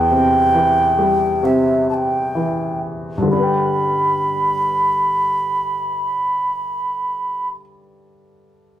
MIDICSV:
0, 0, Header, 1, 3, 480
1, 0, Start_track
1, 0, Key_signature, 1, "major"
1, 0, Tempo, 898204
1, 1259, Tempo, 953895
1, 1740, Time_signature, 4, 2, 24, 8
1, 4502, End_track
2, 0, Start_track
2, 0, Title_t, "Ocarina"
2, 0, Program_c, 0, 79
2, 0, Note_on_c, 0, 79, 109
2, 775, Note_on_c, 0, 76, 74
2, 783, Note_off_c, 0, 79, 0
2, 1011, Note_off_c, 0, 76, 0
2, 1014, Note_on_c, 0, 81, 58
2, 1038, Note_on_c, 0, 79, 63
2, 1043, Note_off_c, 0, 81, 0
2, 1480, Note_off_c, 0, 79, 0
2, 1740, Note_on_c, 0, 83, 73
2, 3840, Note_off_c, 0, 83, 0
2, 4502, End_track
3, 0, Start_track
3, 0, Title_t, "Grand piano"
3, 0, Program_c, 1, 0
3, 0, Control_c, 1, 64, 127
3, 0, Note_on_c, 1, 40, 57
3, 57, Note_on_c, 1, 48, 41
3, 289, Note_on_c, 1, 52, 39
3, 526, Note_on_c, 1, 55, 43
3, 755, Note_off_c, 1, 48, 0
3, 763, Note_on_c, 1, 48, 42
3, 1238, Note_off_c, 1, 52, 0
3, 1256, Note_on_c, 1, 52, 36
3, 1478, Note_off_c, 1, 55, 0
3, 1672, Note_on_c, 1, 43, 38
3, 1696, Note_on_c, 1, 50, 37
3, 1718, Note_off_c, 1, 48, 0
3, 1721, Note_off_c, 1, 40, 0
3, 1722, Note_on_c, 1, 55, 31
3, 1724, Note_off_c, 1, 52, 0
3, 1747, Control_c, 1, 64, 0
3, 1747, Note_on_c, 1, 62, 31
3, 1773, Note_on_c, 1, 71, 33
3, 1799, Note_on_c, 1, 79, 39
3, 1833, Control_c, 1, 64, 127
3, 3772, Note_off_c, 1, 43, 0
3, 3796, Note_off_c, 1, 50, 0
3, 3822, Note_off_c, 1, 55, 0
3, 3847, Note_off_c, 1, 62, 0
3, 3873, Note_off_c, 1, 71, 0
3, 3899, Note_off_c, 1, 79, 0
3, 4502, End_track
0, 0, End_of_file